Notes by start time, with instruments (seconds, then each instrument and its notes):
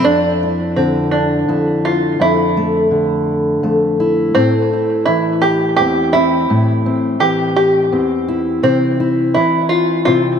Already playing: steel-string acoustic guitar F3 F4
0.04 steel-string acoustic guitar F2, five-string banjo D4
0.43 steel-string acoustic guitar E4
0.76 steel-string acoustic guitar D3, five-string banjo C4
1.11 five-string banjo D4
1.48 steel-string acoustic guitar F2 E4
1.85 five-string banjo F4
2.20 steel-string acoustic guitar F2, five-string banjo E4
2.57 steel-string acoustic guitar A3
2.91 steel-string acoustic guitar D3
3.63 steel-string acoustic guitar F2 A3
4.00 steel-string acoustic guitar E4
4.35 steel-string acoustic guitar A2, five-string banjo C4
4.73 steel-string acoustic guitar E4
5.06 steel-string acoustic guitar E3, five-string banjo E4
5.42 five-string banjo G4
5.77 steel-string acoustic guitar E2 C4, five-string banjo G4
6.13 steel-string acoustic guitar C4, five-string banjo E4
6.50 steel-string acoustic guitar A2
6.86 steel-string acoustic guitar C4
7.20 steel-string acoustic guitar E3, five-string banjo G4
7.56 five-string banjo G4
7.92 steel-string acoustic guitar E2 C4
8.28 steel-string acoustic guitar E4
8.63 steel-string acoustic guitar C3, five-string banjo C4
9.00 steel-string acoustic guitar E4
9.34 steel-string acoustic guitar E3, five-string banjo E4
9.69 five-string banjo F4
10.05 steel-string acoustic guitar C3 C4, five-string banjo F4